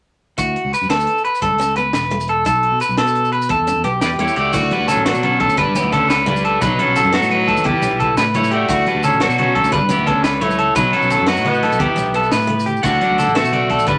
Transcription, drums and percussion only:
0.38 kick, closed hi-hat, maracas
0.56 closed hi-hat
0.73 closed hi-hat, maracas
0.83 maracas
0.90 snare, closed hi-hat
1.00 maracas
1.07 closed hi-hat, maracas
1.18 maracas
1.25 closed hi-hat
1.35 maracas
1.42 kick, closed hi-hat, maracas
1.58 closed hi-hat, maracas
1.76 closed hi-hat, maracas
1.93 snare, closed hi-hat, maracas
2.10 closed hi-hat, maracas
2.20 maracas
2.28 closed hi-hat
2.45 kick, closed hi-hat, maracas
2.63 closed hi-hat
2.80 closed hi-hat, maracas
2.90 maracas
2.97 snare, closed hi-hat
3.07 maracas
3.15 closed hi-hat, maracas
3.25 maracas
3.32 closed hi-hat
3.42 maracas
3.49 kick, closed hi-hat, maracas
3.67 closed hi-hat, maracas
3.85 closed hi-hat, maracas
4.01 snare, closed hi-hat, maracas
4.19 closed hi-hat, maracas
4.28 maracas
4.36 closed hi-hat
4.53 kick, crash, muted conga, low conga, maracas
4.71 closed hi-hat, high conga, maracas
4.80 low conga
4.88 closed hi-hat, low conga, maracas
4.97 muted conga
5.06 snare, closed hi-hat
5.14 low conga, maracas
5.23 closed hi-hat, high conga, low conga
5.40 kick, closed hi-hat, muted conga
5.49 maracas
5.58 kick, closed hi-hat, low conga, maracas
5.75 closed hi-hat, high conga, maracas
5.84 muted conga
5.93 kick, closed hi-hat, low conga, maracas
6.10 snare, closed hi-hat, maracas
6.27 closed hi-hat, muted conga, high conga, low conga
6.36 maracas
6.44 closed hi-hat, low conga
6.61 kick, closed hi-hat, muted conga, low conga, maracas
6.79 closed hi-hat, high conga, maracas
6.88 low conga
6.96 closed hi-hat, low conga, maracas
7.05 muted conga
7.13 snare, closed hi-hat
7.22 low conga, maracas
7.30 closed hi-hat, high conga
7.48 kick, closed hi-hat, muted conga
7.57 maracas
7.65 kick, closed hi-hat, low conga
7.82 closed hi-hat, high conga, maracas
7.91 muted conga
8.00 kick, closed hi-hat, low conga, maracas
8.17 snare, closed hi-hat, maracas
8.34 closed hi-hat, muted conga, high conga, low conga
8.44 maracas
8.51 closed hi-hat, low conga
8.68 kick, closed hi-hat, muted conga, low conga, maracas
8.86 closed hi-hat, high conga, maracas
8.96 low conga
9.03 closed hi-hat, low conga, maracas
9.20 snare, closed hi-hat
9.30 low conga, maracas
9.38 closed hi-hat, high conga, low conga
9.55 kick, closed hi-hat, muted conga
9.64 maracas
9.72 kick, closed hi-hat, low conga
9.89 closed hi-hat, high conga, maracas
9.99 muted conga
10.07 kick, closed hi-hat, low conga, maracas
10.24 snare, closed hi-hat, maracas
10.41 closed hi-hat, muted conga, high conga, low conga
10.50 maracas
10.59 closed hi-hat, low conga
10.75 kick, closed hi-hat, muted conga, low conga, maracas
10.85 low conga
10.93 closed hi-hat, high conga
11.02 maracas
11.10 closed hi-hat, low conga, maracas
11.19 muted conga, low conga
11.27 snare, closed hi-hat, maracas
11.36 maracas
11.45 closed hi-hat, high conga, low conga
11.54 maracas
11.63 snare, closed hi-hat, muted conga, maracas
11.72 maracas
11.79 kick, closed hi-hat, low conga
11.97 closed hi-hat, high conga, low conga, maracas
12.06 muted conga
12.14 closed hi-hat, high conga
12.23 maracas
12.31 snare, closed hi-hat, high conga, maracas
12.42 maracas
12.49 closed hi-hat, low conga
12.59 maracas
12.66 closed hi-hat, low conga, maracas
12.76 maracas
12.84 kick, closed hi-hat, muted conga, low conga, maracas
13.01 closed hi-hat, high conga, maracas
13.11 low conga
13.18 closed hi-hat, low conga, maracas
13.27 muted conga
13.36 snare, closed hi-hat
13.44 low conga, maracas
13.52 closed hi-hat, high conga, low conga
13.70 kick, snare, closed hi-hat, muted conga
13.79 maracas
13.88 kick, closed hi-hat, low conga, maracas

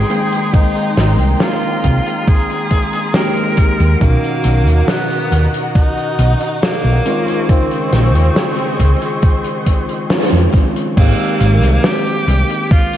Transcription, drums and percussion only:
0.10 closed hi-hat
0.33 closed hi-hat
0.54 kick, closed hi-hat
0.75 closed hi-hat
0.97 snare, closed hi-hat
1.19 closed hi-hat
1.40 snare, closed hi-hat
1.63 closed hi-hat
1.84 kick, closed hi-hat
2.06 closed hi-hat
2.28 kick, closed hi-hat
2.50 closed hi-hat
2.70 kick, closed hi-hat
2.93 closed hi-hat
3.14 snare, closed hi-hat
3.37 closed hi-hat
3.57 kick, closed hi-hat
3.80 closed hi-hat
4.01 kick, closed hi-hat
4.24 closed hi-hat
4.44 closed hi-hat
4.68 closed hi-hat
4.88 snare, closed hi-hat
5.10 closed hi-hat
5.32 closed hi-hat
5.54 closed hi-hat
5.75 kick, closed hi-hat
5.97 closed hi-hat
6.19 closed hi-hat
6.41 closed hi-hat
6.62 snare, closed hi-hat
6.85 closed hi-hat
7.05 closed hi-hat
7.28 closed hi-hat
7.49 kick, closed hi-hat
7.71 closed hi-hat
7.92 snare, closed hi-hat
8.15 closed hi-hat
8.36 snare, closed hi-hat
8.59 closed hi-hat
8.80 kick, closed hi-hat
9.02 closed hi-hat
9.23 kick, closed hi-hat
9.45 closed hi-hat
9.67 kick, closed hi-hat
9.89 closed hi-hat
10.10 snare, closed hi-hat
10.32 closed hi-hat
10.53 kick, closed hi-hat
10.76 closed hi-hat
10.97 kick, closed hi-hat, crash
11.19 closed hi-hat
11.41 closed hi-hat
11.63 closed hi-hat
11.84 snare, closed hi-hat
12.07 closed hi-hat
12.28 closed hi-hat
12.50 closed hi-hat
12.71 kick, closed hi-hat
12.93 closed hi-hat

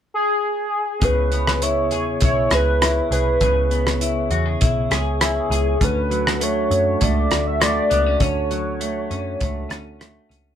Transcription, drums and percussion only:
1.01 kick, closed hi-hat
1.32 closed hi-hat
1.47 cross-stick
1.62 closed hi-hat
1.91 closed hi-hat
2.20 kick, closed hi-hat
2.51 cross-stick, closed hi-hat
2.82 cross-stick, closed hi-hat
3.12 closed hi-hat
3.41 kick, closed hi-hat
3.71 closed hi-hat
3.87 cross-stick
4.01 closed hi-hat
4.31 closed hi-hat
4.61 kick, closed hi-hat
4.91 cross-stick, closed hi-hat
5.21 cross-stick, closed hi-hat
5.52 closed hi-hat
5.81 kick, closed hi-hat
6.11 closed hi-hat
6.27 cross-stick
6.41 closed hi-hat
6.71 closed hi-hat
7.01 kick, closed hi-hat
7.31 cross-stick, closed hi-hat
7.61 cross-stick, closed hi-hat
7.91 closed hi-hat
8.20 kick, closed hi-hat
8.51 closed hi-hat
8.81 closed hi-hat
9.11 closed hi-hat
9.41 kick, closed hi-hat
9.70 cross-stick, closed hi-hat
10.01 cross-stick, closed hi-hat
10.31 closed hi-hat

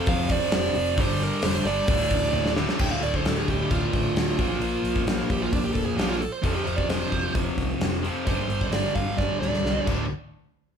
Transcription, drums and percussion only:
0.06 kick, open hi-hat
0.29 kick, open hi-hat
0.52 snare, open hi-hat
0.75 open hi-hat
0.98 kick, open hi-hat
1.20 open hi-hat
1.42 snare, open hi-hat
1.65 snare, open hi-hat
1.88 kick, open hi-hat
2.10 kick, open hi-hat
2.23 snare
2.33 high tom
2.46 snare
2.57 snare
2.69 snare
2.79 kick, crash
3.03 open hi-hat
3.14 kick
3.25 snare, open hi-hat
3.48 kick, open hi-hat
3.71 kick, open hi-hat
3.93 kick, open hi-hat
4.16 snare, open hi-hat
4.39 kick, open hi-hat
4.62 open hi-hat
4.85 open hi-hat
4.96 kick
5.07 snare, open hi-hat
5.30 kick, open hi-hat
5.53 kick, open hi-hat
5.75 kick, open hi-hat
5.99 snare, open hi-hat
6.22 open hi-hat
6.44 kick, open hi-hat
6.67 open hi-hat
6.78 kick
6.89 snare, open hi-hat
7.12 kick, open hi-hat
7.35 kick, open hi-hat
7.58 kick, open hi-hat
7.81 snare, open hi-hat
8.05 open hi-hat
8.27 kick, open hi-hat
8.50 open hi-hat
8.61 kick
8.72 snare, open hi-hat
8.96 kick, open hi-hat
9.19 kick, snare
9.42 snare
9.53 snare
9.66 snare
9.87 kick, crash

